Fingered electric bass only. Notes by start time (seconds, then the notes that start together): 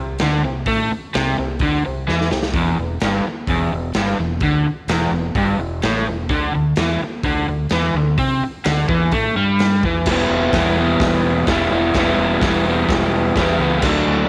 Already playing: C2
0.20 D2
0.44 C2
0.66 A2
0.91 muted fingered electric bass stroke
1.15 C2
1.39 C2
1.60 D2
1.87 C2
2.09 E2
2.32 C2
2.54 E1
2.79 E1
3.02 G1
3.48 E1
3.72 E1
3.95 G1
4.18 E1
4.42 D2
4.65 muted fingered electric bass stroke
4.87 E1
5.11 E1
5.35 G1
5.58 E1
5.83 A1
6.07 E1
6.29 D2
6.55 D2
6.78 E2
7.02 muted fingered electric bass stroke
7.24 D2
7.48 D2
7.71 E2
7.94 D2
8.19 C3
8.41 muted fingered electric bass stroke
8.66 D2
8.89 E2
9.13 A2
9.35 G2
9.84 E2
10.06 E1
10.30 E1
10.53 E1
11.00 E1
11.47 E1
11.72 E1
11.95 E1
12.18 E1
12.42 E1
12.89 E1
13.36 E1
13.59 C#2
13.83 D2
14.07 D2